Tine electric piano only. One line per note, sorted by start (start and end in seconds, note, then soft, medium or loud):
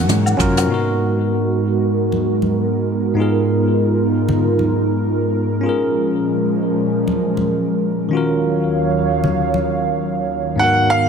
0.00 0.34 C#4 medium
0.00 0.36 D#4 medium
0.00 0.37 F#4 medium
0.00 0.38 A#4 medium
0.37 0.66 C#4 medium
0.37 0.67 F4 medium
0.37 0.68 F#4 medium
0.37 0.68 A#4 loud
0.66 3.13 G#2 medium
0.66 3.14 B3 medium
0.66 3.15 D#4 medium
0.72 3.16 F#4 medium
0.72 3.17 A#4 medium
3.14 5.60 G#2 medium
3.14 5.61 B3 medium
3.14 5.62 D#4 medium
3.18 5.62 F4 medium
3.18 5.63 G#4 medium
3.18 5.64 A#4 medium
5.61 8.07 C#4 medium
5.61 8.09 F4 medium
5.66 8.10 G#4 medium
5.66 8.11 A#4 medium
8.09 10.55 D#3 medium
8.09 10.56 C#4 medium
8.13 10.57 F4 medium
8.13 10.58 F#4 medium
8.13 10.59 A#4 medium
10.56 11.09 G#2 medium
10.56 11.09 B3 medium
10.56 11.09 D#4 medium
10.62 11.09 F#4 medium
10.62 11.09 A#4 medium